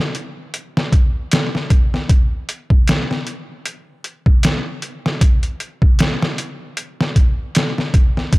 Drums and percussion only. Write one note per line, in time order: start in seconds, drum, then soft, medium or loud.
0.15 closed hi-hat medium
0.54 closed hi-hat medium
0.77 snare soft
0.92 kick medium
0.92 closed hi-hat medium
1.32 snare loud
1.32 closed hi-hat medium
1.55 snare soft
1.70 kick medium
1.70 closed hi-hat medium
1.94 snare soft
2.09 kick loud
2.09 closed hi-hat medium
2.49 closed hi-hat medium
2.70 kick medium
2.88 snare loud
2.88 closed hi-hat medium
3.11 snare soft
3.27 closed hi-hat medium
3.66 closed hi-hat medium
4.04 closed hi-hat medium
4.26 kick medium
4.43 snare loud
4.43 closed hi-hat medium
4.82 closed hi-hat medium
5.06 snare soft
5.21 kick loud
5.21 closed hi-hat medium
5.43 closed hi-hat soft
5.60 closed hi-hat medium
5.82 kick medium
5.99 snare loud
5.99 closed hi-hat medium
6.22 snare medium
6.38 closed hi-hat medium
6.77 closed hi-hat medium
7.01 snare soft
7.16 kick medium
7.16 closed hi-hat medium
7.55 snare loud
7.55 closed hi-hat medium
7.78 snare soft
7.94 kick medium
7.94 closed hi-hat medium
8.17 snare soft
8.33 kick loud
8.33 closed hi-hat medium